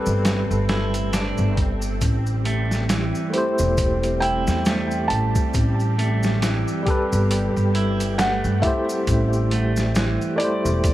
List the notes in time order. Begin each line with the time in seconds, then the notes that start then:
Already playing: G3 A3 C4 G4 A4 B4
0.06 G1, maracas
0.25 snare, closed hi-hat, maracas
0.51 G1, maracas
0.69 E4, snare, closed hi-hat
0.94 closed hi-hat, maracas
1.13 D4, snare, closed hi-hat, maracas
1.38 G1, maracas
1.57 kick, closed hi-hat
1.82 maracas
2.01 A1 G3 G4, kick, closed hi-hat, maracas
2.26 maracas
2.45 A3, closed hi-hat
2.71 snare, maracas
2.89 E3, snare, closed hi-hat, maracas
3.15 maracas
3.30 A3 E4 C5, closed hi-hat
3.35 G4 C5
3.58 E1, maracas
3.77 kick, closed hi-hat, maracas
4.03 closed hi-hat, maracas
4.20 E4 G5, closed hi-hat
4.47 E2, snare, maracas
4.65 A3, snare, closed hi-hat, maracas
4.91 maracas
5.08 A1 A5, closed hi-hat
5.35 kick, maracas
5.54 A1, kick, closed hi-hat, maracas
5.80 maracas
5.98 A3, closed hi-hat
6.23 snare, maracas
6.42 E3, snare, closed hi-hat, maracas
6.68 maracas
6.83 G3 G4, closed hi-hat
6.87 A4 B4, kick
7.12 G1, maracas
7.31 closed hi-hat, maracas
7.56 G1, maracas
7.75 E4, closed hi-hat
8.00 closed hi-hat, maracas
8.18 A3 F#5, snare, closed hi-hat, maracas
8.44 G2, maracas
8.60 A3 E4 E5, kick, closed hi-hat
8.65 G4 C5
8.89 maracas
9.07 A1, kick, closed hi-hat, maracas
9.33 maracas
9.51 A3, closed hi-hat
9.76 snare, maracas
9.95 E3, snare, closed hi-hat, maracas
10.21 maracas
10.36 A3 E4 D5, closed hi-hat
10.41 G4 C5
10.65 E1, maracas
10.84 kick, closed hi-hat, maracas